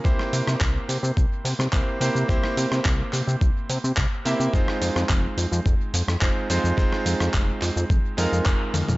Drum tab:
HH |--o---o---o---o-|--o---o---o---o-|--o---o---o---o-|--o---o---o---o-|
SH |x-xxx-xxx-xxx-xx|x-xxx-xxx-xxx-xx|x-xxx-xxx-xxx-xx|x-xxx-xxx-xxx-xx|
CP |----x-------x---|----x-x-----x---|----x-------x---|----x-x-----x---|
SD |-r-r-------r----|-r-r------------|-r-r-------r----|-r-r------------|
T1 |----------------|----------------|----------------|--------------o-|
T2 |----------------|----------------|----------------|---------------o|
BD |o---o---o---o---|o---o---o---o---|o---o---o---o---|o---o---o---o---|